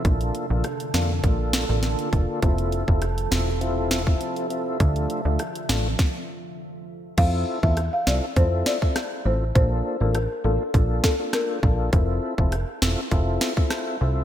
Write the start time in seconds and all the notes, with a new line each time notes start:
Already playing: A4
0.04 A#1 D3 A#3 D4 F4 A4, kick, closed hi-hat
0.21 closed hi-hat
0.35 closed hi-hat
0.50 A#1 A#3 D4 F4 A4
0.64 cross-stick, closed hi-hat
0.80 closed hi-hat
0.94 F2 A#3 D4 F4 A4, snare, closed hi-hat
1.23 A#1 A#3 D4 F4 A4, kick, closed hi-hat
1.53 snare, closed hi-hat
1.69 A1 A#3 D4 F4 A4
1.83 snare, closed hi-hat
1.99 closed hi-hat
2.12 F1 A#3 D4 F4 A4, kick, closed hi-hat
2.42 F1 C3 F3 C4 E4 F4 A4 E5, kick, closed hi-hat
2.58 closed hi-hat
2.72 closed hi-hat
2.87 F1 C4 E4 F4 A4, kick
3.02 cross-stick, closed hi-hat
3.18 closed hi-hat
3.31 E1 C4 E4 F4 A4, snare, closed hi-hat
3.61 C4 E4 F4 A4, closed hi-hat
3.91 snare, closed hi-hat
4.06 C4 E4 F4 A4, kick
4.21 closed hi-hat
4.36 closed hi-hat
4.50 C4 E4 F4 A4, closed hi-hat
4.80 D2 A3 D4 F4 A4, kick, closed hi-hat
4.96 closed hi-hat
5.10 closed hi-hat
5.25 D2 A3 D4 F4 A4
5.39 cross-stick, closed hi-hat
5.55 closed hi-hat
5.69 A1 A3 D4 F4 A4, snare, closed hi-hat
5.99 kick, snare
7.17 F2 C4 E4 F4 A4 F5, kick, closed hi-hat, crash
7.63 E2 C4 E4 F4 A4 E5, kick
7.77 cross-stick, closed hi-hat
7.93 F5
8.07 C2 C4 E4 F4 A4 D5, snare
8.36 F2 C4 E4 F4 A4 C5, kick, closed hi-hat
8.66 D5, snare
8.82 C4 E4 F4 A4, kick
8.96 cross-stick, snare, closed hi-hat
9.25 A1 C4 E4 F4 A4 C5
9.55 A#1 A#3 D4 F4 A4 C5, kick, closed hi-hat
10.00 A1 A#3 D4 F4 A4 A#4
10.15 cross-stick, closed hi-hat
10.44 A1 A#3 D4 F4 A4
10.74 A#1 A#3 D4 F4 A4, kick, closed hi-hat
11.04 A4, kick, snare
11.19 A#3 D4 F4 A4
11.33 A#4, cross-stick, snare, closed hi-hat
11.63 A#1 A#3 D4 F4 A4, kick
11.92 F1 C4 E4 F4 A4, kick, closed hi-hat
12.38 F1 C4 E4 F4 A4, kick
12.52 cross-stick, closed hi-hat
12.82 E1 C4 E4 F4 A4, snare
13.11 F1 C4 E4 F4 A4, kick, closed hi-hat
13.41 snare
13.57 C4 E4 F4 A4, kick
13.70 cross-stick, snare, closed hi-hat
14.01 C2 C4 E4 F4 A4